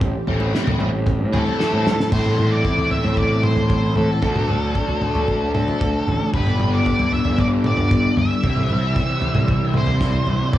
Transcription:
Already playing: picked electric bass A1, string machine G3 C4 G4
0.01 kick, floor tom
0.27 picked electric bass A1, overdriven electric guitar E3 A3 C4 E4, floor tom
0.40 high conga
0.54 overdriven electric guitar E3 A3 C4 E4, snare
0.67 floor tom, mid tom
0.80 picked electric bass A1, high conga, low conga
1.06 kick, floor tom
1.20 picked electric bass A2
1.33 overdriven electric guitar E3 A3 C4 E4, lead electric guitar A4, floor tom, high conga
1.47 low conga
1.59 overdriven electric guitar E3 A3 C4 E4, snare
1.73 picked electric bass A2
1.86 snare, high conga, low conga
2.00 snare
2.11 overdriven electric guitar A2 E3 A3 C4 E4, picked electric bass A2, string machine E3 C4 A4, lead electric guitar C5, kick, floor tom, crash
2.26 mid tom
2.39 picked electric bass A2, mid tom
2.51 lead electric guitar D5
2.65 kick
2.78 floor tom
2.91 lead electric guitar E5, floor tom
3.04 picked electric bass A2, floor tom
3.17 lead electric guitar D5, kick, floor tom
3.43 lead electric guitar C5, mid tom
3.56 floor tom
3.70 kick
3.96 picked electric bass A2, lead electric guitar A4, floor tom
4.22 picked electric bass D2, overdriven electric guitar D3 A3 D4, string machine F#3 D4, kick, floor tom
4.26 overdriven electric guitar F#4
4.35 mid tom
4.49 picked electric bass D2, mid tom
4.75 kick
4.88 floor tom
5.02 floor tom
5.15 picked electric bass D2, floor tom
5.28 kick, floor tom
5.54 lead electric guitar A4, mid tom
5.68 floor tom
5.81 kick
6.07 picked electric bass A1, floor tom
6.33 picked electric bass G1, overdriven electric guitar G2 D3 G3 B3 D4 G4, string machine G3 B4, lead electric guitar B4, kick, floor tom
6.47 mid tom
6.60 picked electric bass G1, mid tom
6.74 lead electric guitar D5
6.86 kick
6.99 floor tom
7.12 lead electric guitar E5, floor tom
7.25 picked electric bass G1, floor tom
7.38 lead electric guitar D5, kick, floor tom
7.64 lead electric guitar D5, mid tom
7.77 floor tom
7.91 kick
8.17 picked electric bass G1, lead electric guitar E5, floor tom
8.43 picked electric bass C2, overdriven electric guitar C3 E3 G3 C4 E4, string machine G3 E4 C5, kick, floor tom
8.57 mid tom
8.70 picked electric bass C2, mid tom
8.96 kick
9.22 floor tom
9.35 picked electric bass C2, floor tom, mid tom
9.48 kick, floor tom
9.74 lead electric guitar C5, mid tom
9.87 floor tom
10.01 kick, snare
10.13 floor tom
10.27 picked electric bass C2, floor tom
10.53 picked electric bass A1, overdriven electric guitar A2 E3, string machine A3, lead electric guitar D5, kick, floor tom

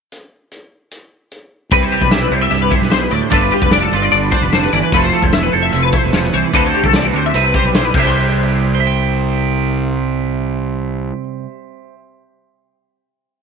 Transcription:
0.12 closed hi-hat
0.51 closed hi-hat
0.91 closed hi-hat
1.31 closed hi-hat
1.71 fingered electric bass C2, clean electric guitar C3 B4, kick, closed hi-hat
1.82 clean electric guitar C5
1.92 clean electric guitar G3 G4, closed hi-hat
2.02 fingered electric bass B1, clean electric guitar B4, kick
2.11 clean electric guitar E4 E5, snare, closed hi-hat
2.22 clean electric guitar B4
2.31 fingered electric bass C2, clean electric guitar E4 C5, closed hi-hat
2.41 clean electric guitar G4 E5
2.51 fingered electric bass C2, clean electric guitar G2 E5, closed hi-hat
2.62 clean electric guitar B4
2.71 clean electric guitar E4 C5, kick, closed hi-hat
2.80 fingered electric bass B1, clean electric guitar B4, snare
2.90 clean electric guitar B2 C5, snare, closed hi-hat
3.02 clean electric guitar B4
3.11 fingered electric bass D2, clean electric guitar A2 D5, closed hi-hat
3.22 clean electric guitar C5
3.30 fingered electric bass G1, clean electric guitar G2 G3 D4 F4 A4 B4, kick, closed hi-hat
3.42 clean electric guitar B4
3.51 clean electric guitar G3 G4, closed hi-hat
3.62 fingered electric bass F1, clean electric guitar B4, kick
3.71 clean electric guitar D4 D5, snare, closed hi-hat
3.82 clean electric guitar A4
3.91 fingered electric bass G1, clean electric guitar F4 B4, closed hi-hat
4.02 clean electric guitar D5
4.12 fingered electric bass G1, clean electric guitar D3 D5, closed hi-hat
4.22 clean electric guitar B4
4.31 clean electric guitar D4 C5, kick, closed hi-hat
4.41 fingered electric bass F1, clean electric guitar B4
4.53 clean electric guitar D3 C5, snare, closed hi-hat
4.63 clean electric guitar B4, snare
4.73 fingered electric bass G1, clean electric guitar E3 D5, closed hi-hat
4.83 clean electric guitar B4
4.92 fingered electric bass F1, clean electric guitar F3 A3 E4 A4 B4, kick, closed hi-hat
4.97 clean electric guitar C5
5.04 clean electric guitar C5
5.12 clean electric guitar A3 A4, closed hi-hat
5.22 fingered electric bass E1, clean electric guitar C5, kick
5.32 clean electric guitar E4 E5, snare, closed hi-hat
5.43 clean electric guitar B4
5.52 fingered electric bass F1, clean electric guitar A4 C5, closed hi-hat
5.63 clean electric guitar E5
5.72 fingered electric bass F1, clean electric guitar C3 E5, closed hi-hat
5.83 clean electric guitar B4
5.93 clean electric guitar E4 C5, kick, closed hi-hat
6.04 fingered electric bass E1, clean electric guitar B4
6.13 clean electric guitar F3 C5, snare, closed hi-hat
6.24 clean electric guitar B4, snare
6.33 fingered electric bass C2, clean electric guitar E3 C5, closed hi-hat
6.45 clean electric guitar B4
6.53 fingered electric bass D2, clean electric guitar D3 A3 C4 F4 A4 B4, kick, closed hi-hat
6.65 clean electric guitar C5
6.74 clean electric guitar A3 G4, closed hi-hat
6.84 fingered electric bass C2, clean electric guitar A4, kick
6.93 clean electric guitar E3 D5, snare, closed hi-hat
7.05 clean electric guitar B4
7.13 fingered electric bass D2, clean electric guitar D3 C5, closed hi-hat
7.26 clean electric guitar E5
7.34 fingered electric bass C2, clean electric guitar C3 B4 E5, closed hi-hat
7.46 clean electric guitar B4
7.54 clean electric guitar G3 C5, kick, closed hi-hat
7.64 fingered electric bass B1, clean electric guitar B4
7.74 clean electric guitar E4 C5, snare, closed hi-hat
7.85 clean electric guitar B4
7.94 fingered electric bass C2, clean electric guitar C3 G3 C5, kick, crash
7.99 clean electric guitar E4 G4 E5 G5
8.07 clean electric guitar C6
8.75 clean electric guitar C5
8.80 clean electric guitar E5
8.87 clean electric guitar G5

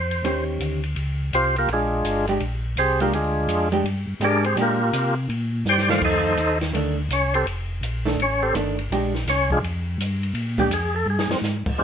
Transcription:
Already playing: tonewheel organ F2 C5
0.11 ride
0.23 tonewheel organ D#2, hollow-body jazz guitar D#3 C#4 G4 C5, ride
0.60 tonewheel organ D2, hi-hat pedal, ride
0.83 ride
0.96 tonewheel organ C#2, ride
1.33 tonewheel organ C2 C4 F4 G4 C5, hi-hat pedal, ride
1.56 tonewheel organ A#3 F4 G4 A#4, ride
1.68 tonewheel organ A#1, ride
1.73 tonewheel organ G#3 D4 F4 G#4
2.04 tonewheel organ G1, hi-hat pedal, ride
2.27 hollow-body jazz guitar G#3 D4 G4, ride
2.40 tonewheel organ A#1, ride
2.76 tonewheel organ C2 C4 G4 G#4 C5, hi-hat pedal, ride
3.00 hollow-body jazz guitar G#3 D4 G4, tonewheel organ A#3 F4 G4 A#4, ride
3.12 tonewheel organ D2 G#3 D4 F4 G#4, ride
3.48 tonewheel organ F2, hi-hat pedal, ride
3.72 hollow-body jazz guitar G#3 D4 G4, ride
3.83 tonewheel organ G2, ride
4.07 tonewheel organ G2
4.20 tonewheel organ G#2, hollow-body jazz guitar G#3 D4 G4, hi-hat pedal, ride
4.24 tonewheel organ D4 G#4 A#4 D5
4.44 tonewheel organ C4 G4 G#4 C5, ride
4.56 tonewheel organ A#2, hollow-body jazz guitar G#3 D4 G4, ride
4.61 tonewheel organ A#3 F4 G4 A#4
4.93 tonewheel organ C3, hi-hat pedal, ride
5.29 tonewheel organ A#2, ride
5.65 tonewheel organ G2, snare, hi-hat pedal
5.69 tonewheel organ G4 C5 D5 G5
5.78 snare
5.89 hollow-body jazz guitar D#3 A3, tonewheel organ F4 C5 D5 F5, snare
6.02 tonewheel organ F2 D#4 A4 C5 D#5, kick, crash
6.37 tonewheel organ D#2, hi-hat pedal, ride
6.61 snare, ride
6.73 tonewheel organ D2, hollow-body jazz guitar D#3 A3 D4, ride
7.09 tonewheel organ C2 C#4 C#5, hi-hat pedal, ride
7.34 tonewheel organ C4 G4 A4 C5, ride
7.45 tonewheel organ F1, ride
7.81 tonewheel organ A#1, hi-hat pedal, ride
8.05 hollow-body jazz guitar D#3 A3 D4, snare
8.17 tonewheel organ A1, ride
8.22 tonewheel organ C#4 C#5
8.43 tonewheel organ C4 G4 A4 C5
8.54 tonewheel organ G1, hollow-body jazz guitar D#3 A3 D4, hi-hat pedal, ride
8.79 ride
8.90 tonewheel organ A#1, hollow-body jazz guitar G#3 D4 G4, ride
9.14 snare
9.26 tonewheel organ C2 C#5, snare, hi-hat pedal, ride
9.30 tonewheel organ C#4
9.51 tonewheel organ G#3 D4 F4 G#4, kick
9.62 tonewheel organ F2, ride
9.98 tonewheel organ G2, hi-hat pedal, ride
10.23 ride
10.33 tonewheel organ A#2, ride
10.58 hollow-body jazz guitar G#3 D4 G4, tonewheel organ G4, kick
10.70 tonewheel organ F2 G#4, hi-hat pedal, ride
10.96 tonewheel organ A4
11.06 tonewheel organ G2
11.10 tonewheel organ G#4
11.19 snare
11.29 tonewheel organ G2 C4, snare
11.41 tonewheel organ G#2, snare, hi-hat pedal
11.66 tonewheel organ G#2, kick, crash
11.78 tonewheel organ F2 G#3 C4 D4 F4 G4

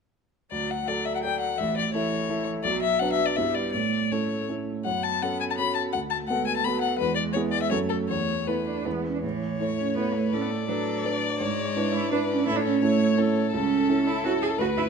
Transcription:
0.51 grand piano D2, cello F#3, violin D5
0.71 violin F#5
0.87 cello F#3, grand piano F#4 A4 D5, violin D5
1.05 violin E5
1.15 violin F#5
1.23 grand piano F#4 A4 D5, violin G5
1.40 violin F#5
1.58 grand piano A1, cello E3, violin E5
1.77 violin D5
1.94 cello E3, grand piano E4 A4 E5, violin C#5
2.29 grand piano E4 A4 E5
2.63 grand piano B1, cello F#3, violin D5
2.82 violin E5
2.99 cello F#3, grand piano D4 F#4 B4, violin F#5
3.13 violin E5
3.26 violin D5
3.36 grand piano G2 B3 E4 B4, cello G3, violin E5
3.54 violin D5
3.72 grand piano A2, cello A3, violin D5
4.11 cello A3, grand piano C#4 E4 A4, violin C#5
4.49 grand piano C#4 E4 A4
4.85 grand piano F#2, cello B3, violin F#5
5.03 violin A5
5.22 grand piano C#4 F#4 A4, violin F#5
5.40 violin G#5
5.50 violin A5
5.58 grand piano C#4 F#4 A4, violin B5
5.75 violin A5
5.93 grand piano D2, cello A3, violin F#5
6.10 violin A5
6.28 cello G#3, grand piano B3 F#4 A4, violin F#5
6.47 violin G#5
6.57 violin A5
6.64 cello F#3, grand piano B3 F#4 A4, violin B5
6.81 violin F#5
6.99 grand piano E2, cello G#3, violin B4
7.15 violin D5
7.33 grand piano B3 E4 G#4, violin C#5
7.52 violin D5
7.62 violin E5
7.71 grand piano F#2 A3 C#4 A4, cello A3, violin C#5
7.89 violin A4
8.08 grand piano E2, cello A3, violin C#5
8.47 grand piano A3 E4 B4, cello B3, violin B4
8.66 cello D4
8.85 grand piano E2 G#3 E4 B4, cello B3
9.05 cello C#4
9.15 cello D4
9.23 grand piano A2, cello E3, violin C#5
9.60 grand piano A3 E4 C#5, violin C#5
9.78 cello C#4
9.95 grand piano A3 E4 C#5, cello B3, violin B4
10.14 cello A3
10.32 grand piano A2, cello C#4, violin A4 D5
10.41 cello B3
10.50 cello A3
10.68 cello F#3, grand piano D4 B4, violin A4
11.05 grand piano D4 B4, violin D5
11.40 grand piano G#2, cello G#3, violin C#5
11.76 grand piano D4 E4 B4
11.93 cello E4
12.12 cello D4, grand piano D4 E4 B4, violin B4
12.30 cello C#4
12.46 grand piano A2, cello E4, violin A4 C#5
12.56 cello D4
12.65 cello C#4
12.82 cello A3, grand piano C#4 E4 A4, violin C#5
13.18 grand piano C#4 E4 A4, violin A4
13.53 grand piano C#2, cello C#4, violin A4
13.89 grand piano C#4 E4 A4
14.07 cello E4
14.24 grand piano C#4 E4 A4, cello F#4, violin A4
14.42 cello G#4
14.58 grand piano D2, cello F#4, violin B4
14.78 cello E4

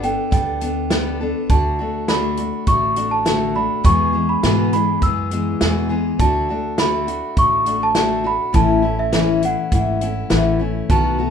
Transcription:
Already playing: upright bass G1
0.02 steel-string acoustic guitar B3 D4 A4, celesta G5, closed hi-hat
0.31 upright bass D2, steel-string acoustic guitar G3 B3 D4 A4, celesta G5, kick, closed hi-hat
0.61 steel-string acoustic guitar B3 D4 A4, closed hi-hat
0.90 steel-string acoustic guitar G3 B3 D4 A4, snare, closed hi-hat
1.20 steel-string acoustic guitar B3 D4 A4
1.49 upright bass D2, steel-string acoustic guitar D3 A3 D4 F#4, celesta A5, kick, closed hi-hat
1.79 steel-string acoustic guitar A3 D4 F#4
2.08 steel-string acoustic guitar D3 A3 D4 F#4, celesta B5, snare, closed hi-hat
2.37 steel-string acoustic guitar A3 D4 F#4, closed hi-hat
2.67 upright bass A1, steel-string acoustic guitar D3 A3 D4 F#4, celesta C#6, kick, closed hi-hat
2.96 steel-string acoustic guitar A3 D4 F#4, closed hi-hat
3.11 celesta A5
3.25 steel-string acoustic guitar D3 A3 D4 F#4, snare, closed hi-hat
3.55 steel-string acoustic guitar A3 D4 F#4, celesta B5
3.84 steel-string acoustic guitar E2 B2 E3 G#3 B3 G#4, upright bass E2, celesta C#6, kick, closed hi-hat
4.13 steel-string acoustic guitar E3 G#3 B3 G#4
4.29 celesta B5
4.43 steel-string acoustic guitar E2 B2 E3 G#3 B3 G#4, upright bass G#2, snare, closed hi-hat
4.73 steel-string acoustic guitar E3 G#3 B3 G#4, celesta B5, closed hi-hat
5.02 upright bass F#2, steel-string acoustic guitar E3 G#3 B3 G#4, celesta E6, kick, closed hi-hat
5.31 steel-string acoustic guitar E3 G#3 B3 G#4, closed hi-hat
5.61 steel-string acoustic guitar E2 B2 E3 G#3 B3 G#4, upright bass E2, snare, closed hi-hat
5.89 steel-string acoustic guitar E3 G#3 B3 G#4
6.19 upright bass D2, steel-string acoustic guitar D3 A3 D4 F#4, celesta A5, kick, closed hi-hat
6.49 steel-string acoustic guitar A3 D4 F#4
6.78 steel-string acoustic guitar D3 A3 D4 F#4, celesta B5, snare, closed hi-hat
7.07 steel-string acoustic guitar A3 D4 F#4, closed hi-hat
7.37 upright bass A1, steel-string acoustic guitar D3 A3 D4 F#4, celesta C#6, kick, closed hi-hat
7.66 steel-string acoustic guitar A3 D4 F#4, closed hi-hat
7.83 celesta A5
7.95 steel-string acoustic guitar D3 A3 D4 F#4, snare, closed hi-hat
8.24 steel-string acoustic guitar A3 D4 F#4, celesta B5
8.53 upright bass A1, steel-string acoustic guitar A2 E3 A3 C#4 E4, celesta A5, kick, closed hi-hat
8.82 steel-string acoustic guitar A3 C#4 E4
8.99 celesta E5
9.13 steel-string acoustic guitar A2 E3 A3 C#4 E4, snare, closed hi-hat
9.42 steel-string acoustic guitar A3 C#4 E4, celesta F#5, closed hi-hat
9.72 upright bass G#1, steel-string acoustic guitar E3 A3 C#4 E4, celesta F#5, kick, closed hi-hat
10.01 steel-string acoustic guitar A3 C#4 E4, closed hi-hat
10.30 upright bass A1, steel-string acoustic guitar A2 E3 A3 C#4 E4, snare, closed hi-hat
10.59 steel-string acoustic guitar A3 C#4 E4
10.90 upright bass B1, steel-string acoustic guitar B2 D#3 A3 B3 F#4, celesta A5, kick, closed hi-hat
11.18 steel-string acoustic guitar A3 B3 F#4

